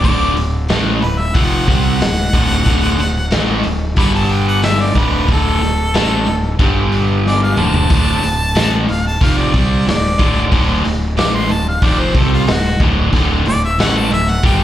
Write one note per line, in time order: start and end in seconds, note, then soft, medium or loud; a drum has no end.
0.04 0.35 D1 medium
0.04 0.36 D2 medium
0.04 0.36 A2 medium
0.04 0.36 D3 loud
0.04 0.36 D5 medium
0.04 kick loud
0.04 open hi-hat medium
0.37 0.67 D1 medium
0.37 0.63 D2 medium
0.37 0.63 A2 medium
0.37 open hi-hat medium
0.69 1.01 A1 medium
0.69 1.02 A2 medium
0.69 1.02 E3 medium
0.69 1.02 A3 loud
0.69 snare loud
0.69 open hi-hat medium
1.02 1.33 D1 medium
1.02 1.29 D2 medium
1.02 1.29 A2 medium
1.02 1.21 B4 medium
1.02 open hi-hat medium
1.19 1.37 E5 medium
1.35 1.66 F1 medium
1.35 1.67 F2 medium
1.35 1.67 C3 medium
1.35 1.68 F3 loud
1.35 1.67 F#5 medium
1.35 kick loud
1.35 open hi-hat medium
1.68 1.98 C2 medium
1.68 2.00 C3 medium
1.68 2.00 G3 loud
1.68 2.01 C4 loud
1.68 3.61 F#5 loud
1.68 kick loud
1.68 open hi-hat medium
2.01 2.32 D1 medium
2.01 2.27 D2 medium
2.01 2.28 A2 medium
2.01 snare loud
2.01 open hi-hat medium
2.33 2.64 D1 loud
2.33 2.65 D2 medium
2.33 2.65 A2 medium
2.33 2.66 D3 medium
2.33 kick loud
2.33 open hi-hat medium
2.66 2.97 D1 loud
2.66 2.98 D2 medium
2.66 2.98 A2 medium
2.66 2.99 D3 loud
2.66 kick loud
2.66 open hi-hat medium
2.99 3.30 D1 medium
2.99 3.26 D2 medium
2.99 3.26 A2 medium
2.99 snare soft
2.99 open hi-hat medium
3.31 3.63 A1 medium
3.31 3.64 A2 medium
3.31 3.64 E3 medium
3.31 3.64 A3 loud
3.31 snare loud
3.31 open hi-hat medium
3.63 3.95 D1 medium
3.63 3.91 D2 medium
3.63 3.91 A2 medium
3.63 open hi-hat medium
3.96 4.92 G1 medium
3.96 4.95 G2 medium
3.96 4.95 D3 loud
3.96 4.95 G3 loud
3.96 4.14 B5 loud
3.96 kick loud
3.96 open hi-hat medium
4.15 4.33 A5 medium
4.29 4.46 G5 medium
4.29 open hi-hat medium
4.48 4.63 F#5 medium
4.62 4.83 E5 loud
4.62 snare loud
4.62 open hi-hat medium
4.81 5.00 D5 medium
4.95 5.26 D1 medium
4.95 5.26 D2 medium
4.95 5.27 A2 medium
4.95 5.27 D3 loud
4.95 5.29 B4 medium
4.95 kick loud
4.95 open hi-hat medium
5.27 5.59 D1 loud
5.27 5.60 D2 medium
5.27 5.60 A2 loud
5.27 5.60 D3 medium
5.27 kick medium
5.27 open hi-hat medium
5.32 6.57 A4 loud
5.61 5.92 D1 medium
5.61 5.88 D2 medium
5.61 5.88 A2 medium
5.61 snare soft
5.61 open hi-hat medium
5.94 6.25 A1 medium
5.94 6.26 A2 medium
5.94 6.26 E3 loud
5.94 6.27 A3 medium
5.94 snare loud
5.94 open hi-hat medium
6.26 6.58 D1 medium
6.26 6.53 D2 medium
6.26 6.53 A2 medium
6.26 open hi-hat medium
6.59 7.54 G1 medium
6.59 7.57 G2 medium
6.59 7.57 D3 medium
6.59 7.57 G3 loud
6.59 kick loud
6.59 open hi-hat medium
6.92 open hi-hat medium
7.26 7.42 D5 medium
7.26 snare medium
7.43 7.59 F5 medium
7.57 7.89 D1 medium
7.57 7.89 D2 medium
7.57 7.90 A2 medium
7.57 7.90 D3 medium
7.57 8.85 A5 loud
7.57 mid tom medium
7.74 floor tom medium
7.90 8.21 D1 loud
7.90 8.21 D2 medium
7.90 8.22 A2 medium
7.90 8.23 D3 loud
7.90 kick loud
7.90 open hi-hat medium
8.22 8.54 D1 medium
8.22 8.49 D2 medium
8.22 8.49 A2 medium
8.22 open hi-hat medium
8.55 8.86 A1 medium
8.55 8.87 A2 medium
8.55 8.88 E3 medium
8.55 8.88 A3 medium
8.55 snare loud
8.55 open hi-hat medium
8.88 9.20 D1 medium
8.88 9.15 D2 medium
8.88 9.15 A2 medium
8.88 9.05 F5 medium
8.88 open hi-hat medium
9.07 9.22 A5 medium
9.21 9.52 F1 medium
9.21 9.53 F2 medium
9.21 9.52 C3 loud
9.21 9.54 F3 loud
9.21 9.39 F5 medium
9.21 kick loud
9.21 open hi-hat medium
9.38 9.86 D5 medium
9.53 9.85 C2 medium
9.53 9.86 C3 medium
9.53 9.86 G3 medium
9.53 9.86 C4 loud
9.53 kick loud
9.53 open hi-hat medium
9.87 10.18 D1 medium
9.87 10.13 D2 medium
9.87 10.13 A2 medium
9.87 10.51 D5 loud
9.87 snare loud
9.87 open hi-hat medium
10.19 10.50 D1 medium
10.19 10.50 D2 medium
10.19 10.51 A2 loud
10.19 10.52 D3 medium
10.19 kick loud
10.19 open hi-hat medium
10.51 10.83 D1 medium
10.51 10.84 D2 medium
10.51 10.84 A2 loud
10.51 10.85 D3 medium
10.51 kick loud
10.51 open hi-hat medium
10.85 11.15 D1 medium
10.85 11.11 D2 medium
10.85 11.11 A2 medium
10.85 snare soft
10.85 open hi-hat medium
11.17 11.48 A1 medium
11.17 11.49 A2 medium
11.17 11.50 E3 medium
11.17 11.50 A3 medium
11.17 11.36 D6 medium
11.17 snare loud
11.17 open hi-hat medium
11.35 11.53 C6 medium
11.49 11.81 D1 medium
11.49 11.77 D2 medium
11.49 11.77 A2 medium
11.49 11.66 A5 medium
11.49 open hi-hat medium
11.68 11.86 F5 medium
11.82 12.13 F1 medium
11.82 12.15 F2 medium
11.82 12.14 C3 medium
11.82 12.15 F3 loud
11.82 12.01 D5 medium
11.82 kick loud
11.82 open hi-hat medium
12.00 12.19 C5 medium
12.14 12.46 C2 medium
12.14 12.47 C3 medium
12.14 12.48 G3 medium
12.14 12.48 C4 medium
12.14 12.32 A4 medium
12.14 kick loud
12.14 open hi-hat medium
12.33 12.48 F4 medium
12.47 12.79 D1 medium
12.47 12.75 D2 medium
12.47 12.75 A2 medium
12.47 12.81 F#4 loud
12.47 snare loud
12.47 open hi-hat medium
12.80 13.11 D1 medium
12.80 13.12 D2 medium
12.80 13.13 A2 medium
12.80 13.13 D3 loud
12.80 kick medium
12.80 open hi-hat medium
13.13 13.44 D1 medium
13.13 13.45 D2 medium
13.13 13.46 A2 loud
13.13 13.46 D3 loud
13.13 kick loud
13.13 open hi-hat medium
13.46 13.77 D1 medium
13.46 13.73 D2 medium
13.46 13.73 A2 medium
13.46 13.63 D5 loud
13.46 snare soft
13.46 open hi-hat medium
13.64 13.79 E5 loud
13.78 14.09 A1 medium
13.78 14.11 A2 medium
13.78 14.11 E3 medium
13.78 14.12 A3 loud
13.78 13.99 F#5 medium
13.78 snare loud
13.78 open hi-hat medium
13.97 14.12 A5 medium
14.11 14.42 D1 medium
14.11 14.38 D2 medium
14.11 14.38 A2 medium
14.11 14.31 E5 loud
14.11 open hi-hat medium
14.30 14.44 F#5 medium
14.43 14.64 G1 medium
14.43 14.64 G2 medium
14.43 14.64 D3 medium
14.43 14.64 G3 loud
14.43 14.64 G5 medium
14.43 kick loud
14.43 open hi-hat medium